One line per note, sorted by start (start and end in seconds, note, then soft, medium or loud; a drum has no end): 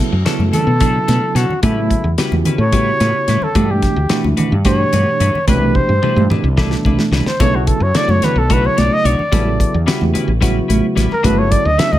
0.00 0.14 C#3 medium
0.00 0.14 F#3 medium
0.00 0.15 B3 medium
0.00 0.15 E4 medium
0.00 0.15 A4 medium
0.12 0.23 F#2 medium
0.25 0.70 C#3 medium
0.25 0.42 F#3 medium
0.25 0.70 F#3 medium
0.25 0.70 B3 medium
0.25 0.42 C#4 medium
0.25 0.43 D4 medium
0.25 0.70 E4 medium
0.25 0.43 A4 medium
0.25 0.70 A4 medium
0.25 muted fretless electric bass stroke soft
0.25 snare loud
0.25 closed hi-hat medium
0.39 0.50 F#2 medium
0.39 high conga medium
0.53 0.70 C#4 soft
0.53 0.70 D4 soft
0.53 0.70 A4 soft
0.53 1.38 A4 medium
0.53 muted fretless electric bass stroke soft
0.53 closed hi-hat medium
0.53 low conga medium
0.67 0.98 B2 medium
0.80 1.46 C#3 medium
0.80 0.97 F#3 medium
0.80 1.46 F#3 medium
0.80 1.46 B3 medium
0.80 0.97 C#4 medium
0.80 0.98 D4 medium
0.80 1.46 E4 medium
0.80 1.46 A4 medium
0.80 0.98 A4 medium
0.80 kick loud
0.80 closed hi-hat medium
0.80 low conga soft
1.08 1.19 B2 medium
1.08 1.25 C#4 soft
1.08 1.25 D4 soft
1.08 1.25 A4 soft
1.08 snare soft
1.08 closed hi-hat medium
1.08 high conga medium
1.35 1.46 B2 medium
1.35 1.52 F#3 soft
1.35 1.52 C#4 medium
1.35 1.52 D4 medium
1.35 1.62 F#4 medium
1.35 1.53 A4 medium
1.35 snare soft
1.35 closed hi-hat medium
1.49 muted fretless electric bass stroke soft
1.49 low conga medium
1.63 1.94 A2 loud
1.63 2.06 C#3 medium
1.63 2.06 F#3 medium
1.63 1.80 G3 medium
1.63 2.07 B3 medium
1.63 1.80 C#4 medium
1.63 2.06 E4 medium
1.63 2.14 E4 medium
1.63 1.80 E4 medium
1.63 2.07 A4 medium
1.63 1.80 B4 medium
1.63 kick loud
1.63 closed hi-hat medium
1.63 high conga loud
1.90 kick medium
1.90 closed hi-hat medium
1.90 low conga soft
2.04 2.15 E2 medium
2.18 2.61 C#3 medium
2.18 2.35 G3 medium
2.18 2.62 B3 medium
2.18 2.35 C#4 medium
2.18 2.62 E4 medium
2.18 2.35 E4 medium
2.18 2.62 F#4 medium
2.18 2.62 G4 medium
2.18 2.35 B4 medium
2.18 muted fretless electric bass stroke soft
2.18 snare loud
2.18 closed hi-hat medium
2.32 2.42 E2 medium
2.32 high conga medium
2.45 2.63 C#4 soft
2.45 2.62 E4 soft
2.45 2.62 B4 soft
2.45 muted fretless electric bass stroke soft
2.45 closed hi-hat medium
2.45 low conga medium
2.58 2.90 A2 medium
2.58 3.45 C#5 loud
2.72 3.38 C#3 medium
2.72 2.89 G3 medium
2.72 3.38 B3 medium
2.72 2.90 C#4 medium
2.72 2.90 E4 medium
2.72 3.39 E4 medium
2.72 3.38 F#4 medium
2.72 3.39 G4 medium
2.72 2.90 B4 medium
2.72 kick medium
2.72 closed hi-hat medium
2.87 low conga soft
3.00 3.11 A2 medium
3.00 3.18 C#4 soft
3.00 3.17 E4 soft
3.00 3.17 B4 medium
3.00 snare soft
3.00 closed hi-hat medium
3.00 high conga medium
3.28 3.38 A2 medium
3.28 3.44 G3 medium
3.28 3.45 C#4 medium
3.28 3.45 E4 medium
3.28 3.45 B4 medium
3.28 snare soft
3.28 closed hi-hat medium
3.41 3.72 A4 medium
3.41 muted fretless electric bass stroke soft
3.41 low conga medium
3.55 3.86 G2 loud
3.55 3.99 B2 medium
3.55 3.99 E3 medium
3.55 3.72 A3 medium
3.55 3.99 A3 medium
3.55 3.72 D4 medium
3.55 3.99 D4 medium
3.55 3.72 F#4 medium
3.55 3.99 G4 medium
3.55 3.72 B4 medium
3.55 kick loud
3.55 closed hi-hat medium
3.55 high conga medium
3.71 4.25 G4 medium
3.82 kick medium
3.82 snare soft
3.82 closed hi-hat medium
3.82 low conga soft
3.96 4.07 D2 medium
4.09 4.54 B2 medium
4.09 4.54 E3 medium
4.09 4.26 A3 medium
4.09 4.54 A3 medium
4.09 4.27 D4 medium
4.09 4.54 D4 medium
4.09 4.54 E4 medium
4.09 4.27 F#4 medium
4.09 4.27 B4 medium
4.09 snare loud
4.09 closed hi-hat medium
4.24 4.35 D2 medium
4.24 high conga medium
4.37 4.55 D4 soft
4.37 4.54 F#4 medium
4.37 4.54 B4 medium
4.37 closed hi-hat medium
4.37 low conga medium
4.52 4.83 G2 medium
4.65 5.30 B2 medium
4.65 5.30 E3 medium
4.65 5.30 A3 medium
4.65 4.82 A3 medium
4.65 5.30 D4 medium
4.65 4.82 D4 medium
4.65 4.82 F#4 medium
4.65 5.30 G4 medium
4.65 4.82 B4 medium
4.65 5.45 C#5 loud
4.65 kick loud
4.65 snare soft
4.65 closed hi-hat medium
4.81 low conga soft
4.93 5.03 G2 medium
4.93 5.10 D4 soft
4.93 5.10 F#4 soft
4.93 5.09 B4 soft
4.93 closed hi-hat medium
4.93 high conga medium
5.20 5.31 G2 medium
5.20 5.37 A3 medium
5.20 5.37 D4 medium
5.20 5.37 F#4 medium
5.20 5.37 B4 medium
5.20 closed hi-hat medium
5.34 muted fretless electric bass stroke soft
5.34 low conga medium
5.47 5.79 C2 medium
5.47 5.91 B2 medium
5.47 5.91 E3 medium
5.47 5.64 G3 medium
5.47 5.91 A3 medium
5.47 5.65 D4 medium
5.47 5.91 D4 medium
5.47 5.65 E4 medium
5.47 5.92 G4 medium
5.47 5.77 B4 medium
5.47 5.65 B4 medium
5.47 kick loud
5.47 closed hi-hat medium
5.47 high conga loud
5.75 6.31 C5 medium
5.75 kick medium
5.75 low conga soft
5.89 5.99 G2 medium
6.02 6.46 B2 medium
6.02 6.47 E3 medium
6.02 6.19 G3 medium
6.02 6.47 A3 medium
6.02 6.19 D4 medium
6.02 6.47 D4 medium
6.02 6.20 E4 medium
6.02 6.47 G4 medium
6.02 6.20 B4 medium
6.02 muted fretless electric bass stroke soft
6.02 high tom medium
6.16 6.27 G2 medium
6.16 high conga medium
6.30 6.47 D4 soft
6.30 6.47 E4 soft
6.30 6.47 B4 soft
6.30 muted fretless electric bass stroke soft
6.30 mid tom medium
6.30 low conga medium
6.44 6.75 C2 medium
6.44 low conga soft
6.57 7.23 B2 medium
6.57 7.23 E3 medium
6.57 6.74 G3 medium
6.57 7.23 A3 medium
6.57 6.74 D4 medium
6.57 7.23 D4 medium
6.57 6.74 E4 medium
6.57 7.23 A4 medium
6.57 6.75 B4 medium
6.57 kick loud
6.57 snare medium
6.71 snare medium
6.85 6.95 C2 medium
6.85 7.02 D4 soft
6.85 7.02 E4 soft
6.85 7.02 B4 medium
6.85 kick medium
6.85 high conga loud
6.85 low conga soft
6.99 snare medium
6.99 low conga soft
7.11 7.22 C2 medium
7.11 7.29 G3 medium
7.11 7.29 D4 medium
7.11 7.29 E4 medium
7.11 7.30 B4 medium
7.11 snare medium
7.26 7.43 C5 medium
7.26 snare medium
7.26 low conga medium
7.40 7.71 B1 loud
7.40 7.83 C#3 medium
7.40 7.83 F#3 medium
7.40 7.56 A3 medium
7.40 7.84 B3 medium
7.40 7.57 D4 medium
7.40 7.84 E4 medium
7.40 7.57 F#4 medium
7.40 7.84 A4 medium
7.40 7.57 C#5 medium
7.40 7.57 C#5 loud
7.40 kick loud
7.40 closed hi-hat medium
7.40 high conga medium
7.55 7.69 F#4 medium
7.67 7.84 A4 medium
7.67 kick medium
7.67 closed hi-hat medium
7.80 7.91 F#2 medium
7.80 7.99 C#5 medium
7.95 8.38 C#3 medium
7.95 8.38 F#3 medium
7.95 8.11 A3 medium
7.95 8.39 B3 medium
7.95 8.12 D4 medium
7.95 8.39 E4 medium
7.95 8.12 F#4 medium
7.95 8.39 A4 medium
7.95 8.12 C#5 medium
7.95 8.12 D5 loud
7.95 muted fretless electric bass stroke soft
7.95 snare loud
7.95 closed hi-hat medium
8.08 8.19 F#2 medium
8.08 8.26 C#5 medium
8.08 high conga medium
8.22 8.40 D4 soft
8.22 8.39 F#4 soft
8.22 8.40 B4 medium
8.22 8.39 C#5 medium
8.22 muted fretless electric bass stroke soft
8.22 snare soft
8.22 closed hi-hat medium
8.22 low conga medium
8.36 8.67 B1 medium
8.36 8.54 A4 medium
8.50 9.15 C#3 medium
8.50 9.15 F#3 medium
8.50 8.66 A3 medium
8.50 9.15 B3 medium
8.50 8.67 D4 medium
8.50 9.15 E4 medium
8.50 8.67 F#4 medium
8.50 9.15 A4 medium
8.50 8.68 B4 medium
8.50 8.67 C#5 medium
8.50 kick loud
8.50 closed hi-hat medium
8.50 low conga soft
8.65 8.80 C#5 medium
8.65 low conga soft
8.77 8.88 B1 medium
8.77 8.94 D4 soft
8.77 8.94 F#4 soft
8.77 8.94 C#5 medium
8.77 8.95 D5 medium
8.77 snare soft
8.77 closed hi-hat medium
8.77 high conga medium
8.93 9.08 D#5 loud
9.04 9.15 B1 medium
9.04 9.21 A3 medium
9.04 9.21 D4 medium
9.04 9.22 F#4 medium
9.04 9.22 C#5 medium
9.04 9.88 D5 medium
9.04 closed hi-hat medium
9.19 muted fretless electric bass stroke soft
9.19 low conga medium
9.32 9.63 A1 medium
9.32 9.76 C#3 medium
9.32 9.76 F#3 medium
9.32 9.49 G3 medium
9.32 9.76 B3 medium
9.32 9.49 C#4 medium
9.32 9.49 E4 medium
9.32 9.76 E4 medium
9.32 9.76 A4 medium
9.32 9.49 B4 medium
9.32 kick loud
9.32 closed hi-hat medium
9.32 high conga medium
9.60 kick medium
9.60 closed hi-hat medium
9.60 low conga soft
9.74 9.84 E2 medium
9.86 10.31 C#3 medium
9.86 10.03 G3 medium
9.86 10.31 B3 medium
9.86 10.03 C#4 medium
9.86 10.04 E4 medium
9.86 10.31 E4 medium
9.86 10.31 F#4 medium
9.86 10.31 G4 medium
9.86 10.04 B4 medium
9.86 muted fretless electric bass stroke soft
9.86 snare loud
9.86 closed hi-hat medium
10.01 10.12 E2 medium
10.01 high conga medium
10.14 10.31 C#4 medium
10.14 10.31 E4 medium
10.14 10.31 B4 medium
10.14 muted fretless electric bass stroke soft
10.14 closed hi-hat medium
10.14 low conga medium
10.28 10.59 A1 medium
10.41 11.07 C#3 medium
10.41 11.07 F#3 medium
10.41 10.58 G3 medium
10.41 11.07 B3 medium
10.41 10.58 C#4 medium
10.41 10.58 E4 medium
10.41 11.08 E4 medium
10.41 11.08 F#4 medium
10.41 10.58 B4 loud
10.41 kick loud
10.41 snare soft
10.41 closed hi-hat medium
10.41 low conga soft
10.57 low conga soft
10.68 10.80 A1 medium
10.68 10.86 C#4 soft
10.68 10.86 E4 soft
10.68 10.86 B4 medium
10.68 closed hi-hat medium
10.68 high conga medium
10.95 11.07 A1 medium
10.95 11.13 G3 medium
10.95 11.13 C#4 medium
10.95 11.13 E4 medium
10.95 11.13 B4 medium
10.95 snare soft
10.95 closed hi-hat medium
11.11 11.27 A#4 medium
11.11 muted fretless electric bass stroke soft
11.11 low conga medium
11.23 11.55 G1 loud
11.23 11.68 C#3 medium
11.23 11.68 F#3 medium
11.23 11.40 A3 medium
11.23 11.68 B3 medium
11.23 11.40 D4 medium
11.23 11.68 E4 medium
11.23 11.40 F#4 medium
11.23 11.69 A4 medium
11.23 11.41 B4 medium
11.23 11.40 B4 medium
11.23 kick loud
11.23 closed hi-hat medium
11.23 high conga medium
11.39 11.53 C#5 medium
11.51 11.68 D5 medium
11.51 kick medium
11.51 closed hi-hat medium
11.51 low conga soft
11.65 11.76 D2 medium
11.65 11.81 D#5 medium
11.78 11.99 C#3 medium
11.78 11.99 F#3 medium
11.78 11.95 A3 medium
11.78 11.99 B3 medium
11.78 11.96 D4 medium
11.78 11.99 E4 medium
11.78 11.96 F#4 medium
11.78 11.99 A4 medium
11.78 11.96 B4 medium
11.78 11.93 E5 loud
11.78 muted fretless electric bass stroke soft
11.78 snare loud
11.78 closed hi-hat medium
11.92 11.99 D2 medium
11.92 11.99 D#5 medium
11.92 high conga medium